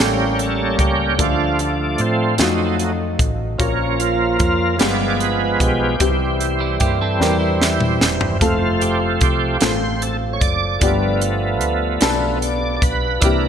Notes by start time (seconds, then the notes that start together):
Already playing: G3
0.00 A1 A2 A#3 C#4 G4 A4 C#5, snare
0.39 A4, closed hi-hat
0.79 C#2 G4, kick, closed hi-hat
1.18 D2 D3 F3 A3 D4 F4 A4 D5 F5, kick, closed hi-hat
1.59 D4, closed hi-hat
1.98 A2 C4, closed hi-hat
2.38 F2 F#3 A3 D#4 F4 F#4 A4 D#5, snare, closed hi-hat
2.79 closed hi-hat
3.19 A1, kick, closed hi-hat
3.58 A#1 A#2 F3 A#3 C#4 F4 A#4 C#5 F5, kick, closed hi-hat
3.99 F4, closed hi-hat
4.39 F2 F4, kick, closed hi-hat
4.78 G1 G2 F3 G#3 B3 F4 G4 B4 D5, snare, closed hi-hat
5.20 B4, closed hi-hat
5.60 B1 G4, kick, closed hi-hat
5.99 C2 C3 E3 G3 C4 D#4 E4 G4 C5 E5, kick, closed hi-hat
6.08 E4
6.41 closed hi-hat
6.60 G3 E4
6.80 G2 A#3 G4, kick, closed hi-hat
7.01 C4 A4
7.20 E2 G3 A#3 C4 D4 G4 A#4, snare
7.27 E4
7.39 G3 E4
7.62 snare
7.80 mid tom
8.01 E1, snare
8.21 floor tom
8.39 F1 F3 A3 C4 F4 A4 F5, kick, closed hi-hat
8.81 G4, closed hi-hat
9.21 C2 G4, kick, closed hi-hat
9.61 A1 A3 C4 F4 A4 C5, snare, closed hi-hat
10.02 A4, closed hi-hat
10.33 C#5
10.41 F#1 D5, kick, closed hi-hat
10.79 G1 G2 F3 A3 B3 D4 F4 G4 B4 D5, kick, closed hi-hat
11.21 closed hi-hat
11.61 D2, closed hi-hat
12.01 B1 F3 A3 B3 D4 F4 A4, snare, closed hi-hat
12.42 D5, closed hi-hat
12.77 D5
12.82 B1 B4, kick, closed hi-hat
13.21 C2 C3 E3 A#3 C4 D4 E4 G4 A#4 E5, kick, closed hi-hat